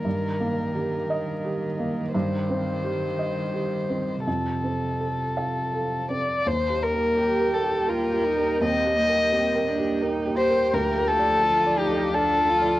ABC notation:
X:1
M:3/4
L:1/8
Q:1/4=85
K:Eblyd
V:1 name="Analog synth pad"
z6 | z6 | z6 | [B,Gg]6- |
[B,Gg]6 | [F,fa]6 |]
V:2 name="Violin"
B6 | c6 | A4- A d | c B2 A B2 |
e4 z c | B A2 G A2 |]
V:3 name="Felt piano"
G,, B, G e G B, | G,, C G e G C | F,, C A f A C | (3E,, G B (3G B G (3B G B |
(3E,, G B (3G B G (3B G B | (3D,, A d- (3d d A (3d A d |]
V:4 name="Cello"
E,6- | E,6 | C,4- C, z | z2 G2 F E |
C B, C D E G- | G2 F E D F |]